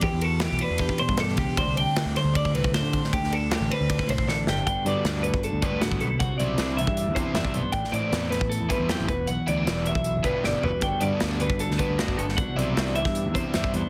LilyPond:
<<
  \new Staff \with { instrumentName = "Clean electric guitar" } { \time 4/4 \key g \major \tempo 4 = 156 g'8 a'8 g'8 b'4 c''8 a'8 g'8 | c''8 g''4 c''8 d''8 b'8 c''4 | g'8 a'8 g'8 b'4 c''8 a'8 g'8 | g''8 d''4 b'8 a'8 b'8 fis'8 a'8 |
fis''8 d''4 e''4 c''8 e''8 c''8 | g''8 d''4 b'8 a'8 b'8 g'8 b'8 | fis''8 d''4 e''4 b'8 d''8 b'8 | g''8 d''4 b'8 a'8 b'8 fis'8 a'8 |
fis''8 d''4 e''4 c''8 e''8 c''8 | }
  \new Staff \with { instrumentName = "Clean electric guitar" } { \time 4/4 \key g \major << { r8 fis'4 d'8 g'8 d'8 g'4 | <d g c' d'>8 d'4 c'8 d'16 e'16 c'8 d'4~ | d'8 d'4 c'8 d'16 e'16 c'8 d'4 | <d b d' fis'>4 d'8 fis'2~ fis'8 |
fis'4 d'8 g'4. d'8 b8 | d'4 b8 d'16 e'4.~ e'16 fis'8~ | fis'8 b16 d'16 fis'4. d'8 g8 fis'8 | <d b d' fis'>4 b16 d'16 fis'4. d'8 b8 |
<e b d' fis'>4 d'8 g'4. d'8 b8 | } \\ { e,4 e4. b,4. | d,4 d4. a,4. | d,4 d4. a,4. | g,4. d4. a,8 b,8 |
c4. e4. g,4 | a,4. e4 g,8 fis,8 e,8~ | e,4 e4. b,4 e,8 | g,4. d4. d,4 |
c4. e4. g,4 | } >> }
  \new Staff \with { instrumentName = "Overdriven electric guitar" } { \time 4/4 \key g \major r1 | r1 | r1 | r8 <d g b d'>8 <d g b d'>8 r4 <d g b d'>8 <d g b d'>8 r8 |
r8 <c g c' e'>8 <c g c' e'>8 r4 <c g c' e'>8 <c g c' e'>8 r8 | r8 <e a c' e'>8 <e a c' e'>8 r4 <e a c' e'>8 <e a c' e'>8 r8 | r8 <e g b e'>8 <e g b e'>8 r4 <e g b e'>8 <e g b e'>8 r8 | r8 <d g b d'>8 <d g b d'>8 r4 <d g b d'>8 <d g b d'>8 r8 |
r8 <c g c' e'>8 <c g c' e'>8 r4 <c g c' e'>8 <c g c' e'>8 r8 | }
  \new Staff \with { instrumentName = "Fingered electric bass" } { \clef bass \time 4/4 \key g \major e,16 e,4 b,,16 r16 e,8 r8 g,8. cis,16 r16 | d,16 c,8 r8 d,16 r16 d,8. c,8 d,16 d8 r16 | d,16 d,4 a,,16 r16 d,8 r16 b,,8 a,,8 g,,8 | g,,16 r16 g,16 r16 d,8. g,,8 d,16 r16 d,8 g,,16 b,,8 |
c,16 r16 b,,8 c,8. g,8 e,8 r16 e,16 r16 b,,16 r16 | a,,16 r16 a,16 r16 e,8. a,,8 e,16 r16 e,8 a,,16 e,,8 | b,,16 r16 d,8 e,,8. b,,8 g,,8 r16 g,,16 r16 fis,,16 r16 | g,,16 r16 g,16 r16 d,8. g,,8 d,16 r16 d,8 g,,16 g,,8 |
c,16 r16 b,,8 c,8. g,8 e,8 r16 e,16 r16 e,16 r16 | }
  \new DrumStaff \with { instrumentName = "Drums" } \drummode { \time 4/4 <bd cymr>8 cymr8 <cymr sn>8 cymr8 <bd cymr>16 bd16 cymr16 bd16 <cymr sn>16 sn16 <bd cymr>8 | <bd cymr>8 cymr8 <cymr sn>8 <cymr sn>8 <bd cymr>16 bd16 cymr16 bd16 <cymr sn>8 <bd cymr>16 sn16 | <bd cymr>16 sn16 cymr8 <cymr sn>8 cymr8 <bd cymr>16 bd16 cymr16 bd16 sn8 sn8 | <hh bd>8 hh8 <hh sn>8 hh16 bd16 hh8 <hh bd>8 <hh sn>16 bd16 hh8 |
<hh bd>8 hh8 <hh sn>8 hh16 bd16 hh8 <hh bd>8 <hh sn>16 bd16 hh8 | <hh bd>16 sn16 hh8 <hh sn>8 <hh sn>16 bd16 hh8 <hh bd>8 <hh sn>8 <hh bd>8 | hh8 hh8 <hh sn>8 hh16 bd16 hh8 <hh bd>8 sn8 tomfh8 | <hh bd>8 hh8 <hh sn>8 hh16 bd16 hh16 sn16 <hh bd>8 <hh sn>16 bd16 hh16 sn16 |
<hh bd>8 hh8 <hh sn>8 hh16 <bd sn>16 hh8 <hh bd>8 <hh sn>16 bd16 hh8 | }
>>